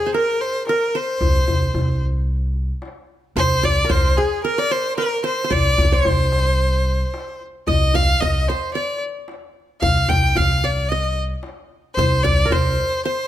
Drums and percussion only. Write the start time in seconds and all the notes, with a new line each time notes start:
0.40 darbuka ka
0.67 darbuka tek
1.21 darbuka dum
1.48 darbuka dum
1.75 darbuka dum
2.56 darbuka ka
2.82 darbuka tek
3.36 darbuka dum
3.63 darbuka dum
3.90 darbuka dum
4.71 darbuka ka
4.97 darbuka tek
5.51 darbuka dum
5.65 darbuka ka
5.78 darbuka dum
6.05 darbuka dum
6.32 darbuka tek
6.60 darbuka ka
6.86 darbuka ka
7.14 darbuka tek
7.41 darbuka ka
7.67 darbuka dum
7.94 darbuka dum
8.21 darbuka dum
8.48 darbuka tek
9.01 darbuka ka
9.28 darbuka tek
9.82 darbuka dum
10.08 darbuka dum
10.36 darbuka dum
11.17 darbuka ka
11.43 darbuka tek
11.97 darbuka dum
12.24 darbuka dum
12.50 darbuka dum